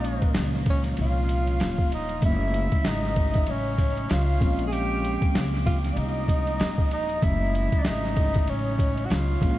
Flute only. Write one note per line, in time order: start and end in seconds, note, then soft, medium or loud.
0.00 0.32 D#5 medium
0.69 0.76 C#5 medium
1.00 1.89 F5 medium
1.93 2.21 D#5 medium
2.24 2.88 E5 medium
2.87 3.50 D#5 medium
3.49 4.12 C#5 medium
4.10 4.66 F5 medium
4.67 4.74 G#5 medium
4.72 5.35 G5 medium
5.66 5.72 F5 medium
5.93 6.00 D5 medium
5.98 6.91 D#5 medium
6.92 7.25 D#5 medium
7.23 7.80 E5 medium
7.78 7.88 D5 medium
7.87 8.51 D#5 medium
8.49 9.07 C#5 medium
9.06 9.13 F#5 medium
9.11 9.59 F5 medium